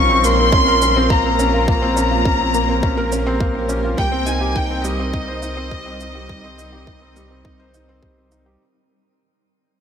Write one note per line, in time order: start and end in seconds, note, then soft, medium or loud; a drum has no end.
0.00 3.96 A#1 medium
0.00 3.94 A#3 medium
0.00 0.10 C4 loud
0.00 0.53 C#4 medium
0.00 1.54 F4 medium
0.00 1.65 F4 medium
0.00 8.56 A#4 medium
0.00 0.24 C#6 loud
0.10 0.23 C4 medium
0.24 0.38 A#3 medium
0.24 1.11 C6 loud
0.24 shaker medium
0.39 0.52 C4 medium
0.52 0.61 C#4 medium
0.52 kick loud
0.67 0.81 A#4 medium
0.82 0.96 C#4 medium
0.82 shaker medium
0.96 1.04 C4 loud
1.10 1.19 A#3 medium
1.10 1.67 A#5 medium
1.10 kick loud
1.25 1.38 C4 medium
1.39 1.53 C#4 medium
1.39 shaker medium
1.54 1.67 F4 medium
1.68 1.76 A#3 medium
1.68 3.96 G4 medium
1.68 3.37 A#5 loud
1.68 kick loud
1.82 1.90 C4 loud
1.97 2.10 C#4 medium
1.97 shaker medium
2.11 2.19 F4 medium
2.25 2.34 C#4 medium
2.25 kick loud
2.40 2.54 C4 medium
2.54 2.68 A#3 medium
2.54 shaker medium
2.69 2.83 C4 medium
2.83 2.91 C#4 medium
2.83 kick loud
2.97 3.11 A#4 loud
3.12 3.26 C#4 medium
3.12 shaker medium
3.27 3.35 C4 loud
3.40 3.49 A#3 medium
3.40 kick loud
3.55 3.69 C4 medium
3.69 3.83 C#4 medium
3.69 shaker medium
3.84 3.98 F4 medium
3.97 8.57 C2 medium
3.97 4.06 G3 medium
3.97 8.56 G3 medium
3.97 8.56 C4 medium
3.97 8.56 D#4 medium
3.97 4.25 G5 loud
3.97 kick loud
4.12 4.21 C4 loud
4.26 4.40 D#4 medium
4.26 4.56 G#5 loud
4.26 shaker medium
4.41 4.50 G4 medium
4.55 4.64 D#4 medium
4.55 4.85 G5 loud
4.55 kick loud
4.70 4.84 C4 medium
4.84 4.98 G3 medium
4.84 8.02 D#5 loud
4.84 shaker medium
4.99 5.13 C4 medium
5.13 5.22 D#4 medium
5.13 kick loud
5.28 5.42 C5 loud
5.42 5.56 D#4 medium
5.42 shaker medium
5.57 5.65 C4 loud
5.71 5.80 G3 medium
5.71 kick loud
5.86 6.00 C4 medium
6.00 6.14 D#4 medium
6.00 shaker medium
6.15 6.29 G4 medium
6.29 6.38 G3 medium
6.29 kick loud
6.44 6.52 C4 loud
6.58 6.72 D#4 medium
6.58 shaker medium
6.73 6.81 G4 medium
6.87 6.96 D#4 medium
6.87 kick loud
7.02 7.15 C4 medium
7.16 7.30 G3 medium
7.16 shaker medium
7.31 7.44 C4 medium
7.45 7.53 D#4 medium
7.45 kick loud
7.59 7.73 C5 loud
7.74 7.88 D#4 medium
7.74 shaker medium
7.89 7.97 C4 loud
8.03 8.11 G3 medium
8.03 kick loud
8.18 8.31 C4 medium
8.32 8.45 D#4 medium
8.32 shaker medium
8.46 8.60 G4 medium